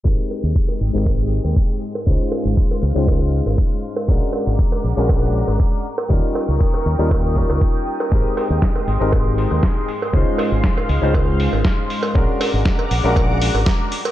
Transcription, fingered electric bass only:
\new Staff \with { instrumentName = "Fingered electric bass" } { \clef bass \time 4/4 \key aes \major \tempo 4 = 119 aes,,16 r8 ees,16 r8 aes,,16 aes,,4 ees,16 r4 | des,16 r8 aes,,16 r8 des,16 des,4 aes,,16 r4 | bes,,16 r8 aes,,16 r8 bes,,16 bes,,4 aes,,16 r4 | ees,16 r8 des,16 r8 ees,16 ees,4 des,16 r4 |
aes,,16 r8 ees,16 r8 aes,,16 aes,,4 ees,16 r4 | des,16 r8 aes,,16 r8 des,16 des,4 aes,,16 r4 | bes,,16 r8 aes,,16 r8 bes,,16 bes,,4 aes,,16 r4 | }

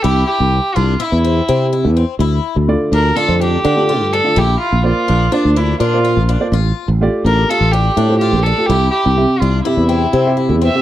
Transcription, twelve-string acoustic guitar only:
\new Staff \with { instrumentName = "Twelve-string acoustic guitar" } { \time 9/8 \key c \mixolydian \tempo 4. = 83 e'4 r8 d'8 e'8 c'8 c'8 e'8 c'8 | e'4 r8 d'8 f'8 d'8 d'8 f'8 d'8 | e'4 r8 d'8 f'8 d'8 d'8 f'8 d'8 | f'4 r8 d'8 f'8 d'8 d'8 f'8 d'8 |
e'4 r8 d'8 e'8 c'8 c'8 e'8 c'8 | }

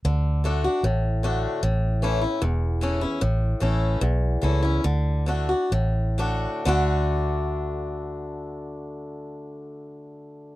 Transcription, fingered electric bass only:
\new Staff \with { instrumentName = "Fingered electric bass" } { \clef bass \time 4/4 \key d \major \tempo 4 = 142 d,2 a,,2 | a,,2 e,,2 | a,,4 a,,4 b,,4 cis,4 | d,2 a,,2 |
d,1~ | d,1 | }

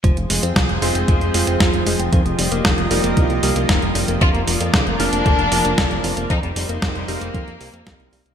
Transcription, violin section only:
\new Staff \with { instrumentName = "Violin section" } { \time 4/4 \key f \dorian \tempo 4 = 115 << { r1 | r1 | f'8 r4 d'2~ d'8 | ees'8 r4 bes2~ bes8 | } \\ { r1 | r1 | r16 bes16 bes16 r16 bes16 bes16 r2 r8 | r16 g16 g16 r16 g16 g16 r2 r8 | } >> }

